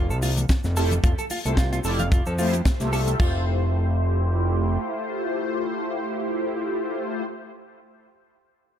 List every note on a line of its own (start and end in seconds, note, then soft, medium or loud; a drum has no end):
0.00 0.12 F1 medium
0.10 0.45 C2 loud
0.10 0.17 A4 medium
0.10 cabasa medium
0.22 0.30 F4 loud
0.22 open hi-hat loud
0.22 high conga medium
0.22 cabasa medium
0.37 closed hi-hat medium
0.37 muted conga medium
0.37 low conga medium
0.37 cabasa medium
0.49 kick loud
0.49 snare loud
0.49 closed hi-hat medium
0.49 cabasa medium
0.64 0.99 F1 loud
0.64 snare soft
0.64 muted conga medium
0.64 high conga medium
0.64 cabasa soft
0.76 0.93 A3 medium
0.76 0.93 E4 medium
0.76 0.93 F4 medium
0.76 0.93 G4 medium
0.76 0.84 A4 loud
0.76 0.93 A4 loud
0.76 open hi-hat loud
0.76 cabasa medium
0.91 closed hi-hat medium
0.91 low conga medium
0.91 cabasa medium
1.04 1.15 F1 loud
1.04 1.11 F4 medium
1.04 kick loud
1.04 closed hi-hat medium
1.04 muted conga medium
1.04 cabasa medium
1.18 1.25 A4 medium
1.18 closed hi-hat medium
1.18 cabasa medium
1.30 1.38 F4 loud
1.30 open hi-hat loud
1.30 muted conga medium
1.30 high conga medium
1.30 cabasa medium
1.45 1.80 C2 loud
1.45 1.59 A3 medium
1.45 1.59 E4 medium
1.45 1.59 F4 medium
1.45 1.60 G4 medium
1.45 1.55 A4 medium
1.45 1.60 C5 medium
1.45 closed hi-hat medium
1.45 high conga medium
1.45 cabasa soft
1.57 1.69 F4 medium
1.57 kick medium
1.57 snare loud
1.57 closed hi-hat medium
1.57 cabasa medium
1.73 1.79 F4 loud
1.73 closed hi-hat medium
1.73 muted conga medium
1.73 cabasa medium
1.84 2.21 F1 medium
1.84 2.01 A3 medium
1.84 2.01 E4 medium
1.84 2.01 F4 medium
1.84 2.01 G4 medium
1.84 1.92 A4 loud
1.84 2.01 D5 medium
1.84 open hi-hat loud
1.84 cabasa loud
1.99 2.06 F5 medium
1.99 closed hi-hat medium
1.99 muted conga medium
1.99 low conga medium
1.99 cabasa soft
2.12 2.23 F4 medium
2.12 kick loud
2.12 closed hi-hat medium
2.12 cabasa medium
2.26 2.62 F2 medium
2.26 2.33 A4 medium
2.26 cabasa medium
2.38 2.55 A3 loud
2.38 2.55 E4 medium
2.38 2.46 F4 loud
2.38 2.55 F4 medium
2.38 2.55 G4 medium
2.38 2.55 C5 loud
2.38 open hi-hat loud
2.38 muted conga medium
2.38 high conga medium
2.38 cabasa medium
2.54 closed hi-hat medium
2.54 cabasa medium
2.65 kick loud
2.65 snare loud
2.65 closed hi-hat medium
2.65 muted conga medium
2.65 cabasa medium
2.80 3.16 C2 loud
2.80 3.17 A3 medium
2.80 3.18 F4 medium
2.80 3.19 G4 medium
2.80 3.19 A4 medium
2.80 3.18 E5 medium
2.80 snare soft
2.80 closed hi-hat medium
2.80 high conga medium
2.80 cabasa medium
2.93 3.00 A4 loud
2.93 open hi-hat loud
2.93 cabasa medium
3.08 closed hi-hat medium
3.08 muted conga medium
3.08 cabasa soft
3.18 4.78 F1 loud
3.18 7.22 A3 medium
3.18 7.23 E4 medium
3.18 7.24 F4 medium
3.18 3.45 F4 medium
3.18 7.24 G4 medium
3.18 7.25 C5 medium
3.18 kick loud
3.18 splash medium